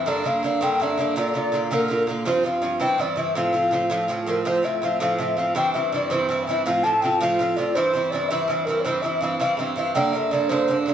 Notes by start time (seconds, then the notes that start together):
0.06 G2 D3 A#3 D4 D5
0.24 G2 D3 A#3 D4 F5
0.43 G2 D3 A#3 D4
0.61 G2 D3 A#3 D4 G5
0.80 G2 D3 A#3 D4 E5
0.98 G2 D3 A#3 D4
1.16 A#2 D3 A#3 F4 D5
1.34 A#2 D3 A#3 F4 D5
1.52 A#2 D3 A#3 F4
1.64 A4
1.71 A#2 D3 A#3 F4 A#4
1.88 A#2 D3 A#3 F4
2.07 A#2 D3 A#3 F4
2.25 G2 F3 C4 F4 C5
2.43 G2 F3 C4 F4 F5
2.62 G2 F3 C4 F4
2.80 G2 E3 C4 E4 G5
2.98 G2 E3 C4 E4 D5
3.16 G2 E3 C4 E4 E5
3.35 A2 F3 C4 F4 F5
3.53 A2 F3 C4 F4
3.71 A2 F3 C4 F4
3.90 A2 F3 C4 F4
4.08 A2 F3 C4 F4
4.26 A2 F3 C4 F4 A#4
4.45 A2 F3 C4 F4 C5
4.63 A2 F3 C4 F4 E5
4.82 A2 F3 C4 F4 F5
5.00 A2 F3 C4 F4 F5
5.18 A2 F3 C4 F4 E5
5.37 A2 F3 C4 F4 F5
5.55 G2 E3 C4 E4 G5
5.73 G2 E3 C4 E4 E5
5.92 G2 E3 C4 E4 D5
6.10 G2 E3 C4 E4 C5
6.29 G2 E3 C4 E4
6.43 E5 F5
6.47 G2 E3 C4 E4 E5
6.65 A2 F3 C4 F4 F5
6.83 A2 F3 C4 F4 A5
7.02 A2 F3 C4 F4 G5
7.20 A2 F3 C4 F4 F5
7.39 A2 F3 C4 F4
7.57 A2 F3 C4 F4 D5
7.75 G2 E3 C4 E4 C5
7.94 G2 E3 C4 E4
8.11 G2 E3 C4 D5
8.15 E4
8.29 G2 E3 C4 E4 E5
8.48 G2 E3 C4 E4
8.65 G2 E3 C4 A#4
8.70 E4
8.80 C5 D5
8.85 G2 E3 C4 E4 C5
9.02 G2 E3 C4 E5
9.06 E4
9.21 G2 E3 C4 E4 F5
9.39 G2 E3 C4 E4 F5
9.57 G2 E3 C4 E4 E5
9.76 G2 E3 C4 E4 F5
9.94 G2 D3 A#3 D4 G5
10.12 G2 D3 A#3 D4 E5
10.31 G2 D3 A#3 D4 D5
10.49 G2 D3 A#3 D4 C5
10.68 G2 D3 A#3 D4
10.86 G2 D3 A#3 D4